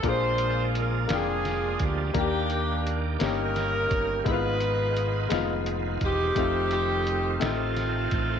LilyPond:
<<
  \new Staff \with { instrumentName = "Saxophone section" } { \time 6/8 \key ees \major \tempo 4. = 57 << { c''4 bes'8 aes'4 g'8 | g'4 r8 bes'4. | ces''2 r8 g'8~ | g'8 g'4 f'4. | } \\ { <f' aes'>4. <d' f'>4. | <bes d'>4. <des' ees'>4. | <ees' f'>2 r8 <c' ees'>8~ | <c' ees'>8 <c' ees'>4 <a c'>4. | } >> }
  \new Staff \with { instrumentName = "Grand piano" } { \time 6/8 \key ees \major <bes d' f' aes'>4 r8 <bes d' f' g''>4 r8 | <bes d' g'>4 r8 <bes des' ees' g'>4 r8 | <aes ces' ees' fes' f'>4 r8 <aes ces' ees' f'>4 r8 | <a c' ees' f'>4 r8 <a c' ees' g'>4 r8 | }
  \new Staff \with { instrumentName = "Grand piano" } { \clef bass \time 6/8 \key ees \major bes,4. r4. | ees4. g,4. | aes,4. r4. | r2. | }
  \new Staff \with { instrumentName = "Tonewheel organ" } { \time 6/8 \key ees \major <f aes bes d' g'>2. | <ees bes d' f' g'>4. <ees bes des' ges' g'>4. | <ees aes fes' f' ces''>2. | <ees a c' f'>2. | }
  \new Staff \with { instrumentName = "Fingered electric bass" } { \clef bass \time 6/8 \key ees \major bes,,4. f,,4 d,8 | ees,4. g,,4 g,,8 | aes,,4. f,,4 fes,,8 | f,,4. a,,4 a,,8 | }
  \new DrumStaff \with { instrumentName = "Drums" } \drummode { \time 6/8 <hh bd>8 hh8 hh8 <hh sn>8 <hh sn>8 <hh bd>8 | <hh bd>8 hh8 hh8 <hh sn>8 <hh sn>8 <hh bd>8 | <hh bd>8 hh8 hh8 <hh sn>8 hh8 <hh bd>8 | <hh bd>8 hh8 hh8 <hh sn>8 <hh sn>8 <hh bd>8 | }
>>